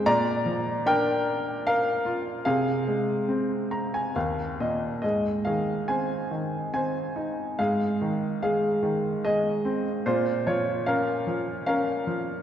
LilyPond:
<<
  \new Staff \with { instrumentName = "Upright piano" } { \time 3/4 \key bes \dorian \tempo 4 = 74 << { r2. | r4. bes''16 aes''16 f''8 ees''8 | \key aes \major r2. | r2. |
r2. | } \\ { <d'' bes''>4 <bes' g''>4 <bes' f''>4 | <aes' f''>2 r4 | <aes' ees''>8 <aes' f''>8 <c'' aes''>4 <c'' aes''>4 | <aes' f''>4 <aes' f''>4 <aes' ees''>8. r16 |
<f' c''>8 <f' des''>8 <bes' f''>4 <bes' f''>4 | } >> }
  \new Staff \with { instrumentName = "Upright piano" } { \clef bass \time 3/4 \key bes \dorian bes,8 f8 d'4. f'8 | c8 aes8 c'4 ees,8 bes,8 | \key aes \major aes,8 ees8 c'8 ees8 c'8 ees'8 | aes,8 ees8 aes8 ees8 aes8 c'8 |
bes,8 f8 des'8 f8 des'8 f8 | }
>>